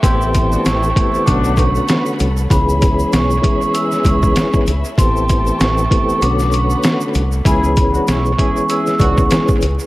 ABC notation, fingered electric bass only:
X:1
M:4/4
L:1/16
Q:"Swing 16ths" 1/4=97
K:C#phr
V:1 name="Fingered electric bass" clef=bass
A,,,4 A,,,2 z2 B,,,4 z2 ^B,,,2 | C,,4 B,,,2 z4 C,,2 z2 C,, z | A,,,4 A,,,2 z2 B,,,4 z2 ^B,,,2 | C,,4 B,,,2 z4 C,,2 z2 C,, z |]